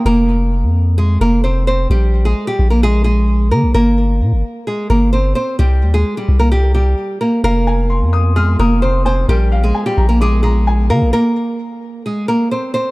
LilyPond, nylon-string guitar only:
\new Staff \with { instrumentName = "Nylon-string guitar" } { \time 4/4 \key f \dorian \tempo 4 = 130 <bes bes'>2 <aes aes'>8 <bes bes'>8 <c' c''>8 <c' c''>8 | <g g'>8. <aes aes'>8 <g g'>8 <bes bes'>16 <aes aes'>8 <aes aes'>4 <bes bes'>8 | <bes bes'>2 <aes aes'>8 <bes bes'>8 <c' c''>8 <c' c''>8 | <g g'>8. <aes aes'>8 <g g'>8 <bes bes'>16 <g g'>8 <g g'>4 <bes bes'>8 |
<bes bes'>2 <aes aes'>8 <bes bes'>8 <c' c''>8 <c' c''>8 | <g g'>8. <aes aes'>8 <g g'>8 <bes bes'>16 <aes aes'>8 <aes aes'>4 <bes bes'>8 | <bes bes'>2 <aes aes'>8 <bes bes'>8 <c' c''>8 <c' c''>8 | }